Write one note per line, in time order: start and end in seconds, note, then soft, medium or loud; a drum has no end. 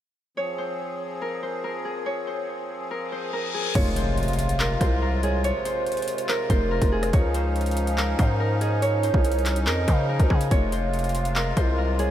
0.37 3.72 F3 medium
0.37 3.72 C4 medium
0.37 3.72 G#4 medium
0.37 0.64 C#5 loud
0.58 1.42 C5 medium
1.22 1.63 A#4 medium
1.43 2.12 C5 medium
1.64 2.90 A#4 medium
1.85 3.54 G#4 medium
2.06 2.33 C#5 medium
2.27 3.12 C5 medium
2.91 3.33 A#4 medium
2.91 reverse cymbal medium
3.12 3.81 C5 medium
3.33 4.59 A#4 medium
3.54 5.23 G#4 medium
3.75 4.77 F1 loud
3.75 7.10 C3 medium
3.75 7.10 G#3 medium
3.75 7.10 F4 medium
3.75 4.02 C#5 loud
3.75 5.19 F5 loud
3.75 kick loud
3.75 closed hi-hat medium
3.75 crash loud
3.75 impact medium
3.96 4.80 C5 medium
3.96 closed hi-hat medium
4.17 closed hi-hat medium
4.23 closed hi-hat medium
4.28 closed hi-hat medium
4.33 closed hi-hat medium
4.39 closed hi-hat medium
4.49 closed hi-hat medium
4.60 5.02 A#4 medium
4.60 clap loud
4.81 5.52 C2 loud
4.81 5.50 C5 medium
4.81 kick loud
4.81 closed hi-hat medium
5.02 6.28 A#4 medium
5.23 6.92 G#4 medium
5.23 5.43 C#5 medium
5.23 closed hi-hat medium
5.44 6.25 C5 loud
5.44 5.71 C#5 loud
5.44 closed hi-hat medium
5.65 6.49 C5 medium
5.65 closed hi-hat medium
5.86 closed hi-hat medium
5.92 closed hi-hat medium
5.97 closed hi-hat medium
6.02 closed hi-hat medium
6.08 closed hi-hat medium
6.18 closed hi-hat medium
6.29 7.09 A#4 loud
6.29 6.71 A#4 medium
6.29 clap loud
6.50 6.80 F1 loud
6.50 7.19 C5 medium
6.50 kick loud
6.50 closed hi-hat medium
6.71 7.97 A#4 medium
6.82 7.12 F1 loud
6.82 kick medium
6.82 closed hi-hat medium
6.92 8.61 G#4 medium
7.03 cross-stick medium
7.03 closed hi-hat medium
7.13 8.15 C#2 loud
7.13 10.48 F3 medium
7.13 10.48 C#4 medium
7.13 10.48 D#4 medium
7.13 7.40 C#5 loud
7.13 8.57 F5 loud
7.13 kick loud
7.13 closed hi-hat medium
7.34 8.18 C5 medium
7.34 closed hi-hat medium
7.56 closed hi-hat medium
7.61 closed hi-hat medium
7.66 closed hi-hat medium
7.71 closed hi-hat medium
7.77 closed hi-hat medium
7.87 closed hi-hat medium
7.97 8.40 A#4 medium
7.97 clap loud
8.19 9.10 G#2 loud
8.19 8.88 C5 medium
8.19 kick loud
8.19 closed hi-hat medium
8.40 9.66 A#4 medium
8.61 10.30 G#4 medium
8.61 8.81 D#5 medium
8.61 closed hi-hat medium
8.82 9.09 C#5 loud
8.82 9.63 C#5 loud
8.82 closed hi-hat medium
9.03 9.88 C5 medium
9.03 closed hi-hat medium
9.14 9.68 C2 loud
9.14 kick loud
9.25 closed hi-hat medium
9.32 closed hi-hat medium
9.39 closed hi-hat soft
9.46 clap medium
9.46 closed hi-hat medium
9.56 closed hi-hat medium
9.67 9.87 F2 loud
9.67 10.09 A#4 medium
9.67 10.06 D#5 loud
9.67 clap loud
9.88 10.18 C#3 loud
9.88 10.57 C5 medium
9.88 kick loud
9.88 closed hi-hat medium
10.09 11.35 A#4 medium
10.20 10.30 C#2 loud
10.20 kick medium
10.20 closed hi-hat medium
10.30 10.50 C#3 loud
10.30 11.99 G#4 medium
10.30 kick loud
10.41 closed hi-hat medium
10.51 11.53 F1 loud
10.51 12.11 C3 medium
10.51 12.11 G#3 medium
10.51 12.11 F4 medium
10.51 10.78 C#5 loud
10.51 11.95 F5 loud
10.51 kick loud
10.51 closed hi-hat medium
10.72 11.56 C5 medium
10.72 closed hi-hat medium
10.94 closed hi-hat medium
10.99 closed hi-hat medium
11.04 closed hi-hat medium
11.09 closed hi-hat medium
11.15 closed hi-hat medium
11.25 closed hi-hat medium
11.36 11.78 A#4 medium
11.36 clap loud
11.57 12.11 C2 loud
11.57 12.11 C5 medium
11.57 kick loud
11.57 closed hi-hat medium
11.78 12.11 A#4 medium
11.99 12.11 G#4 medium
11.99 12.11 C#5 medium
11.99 closed hi-hat medium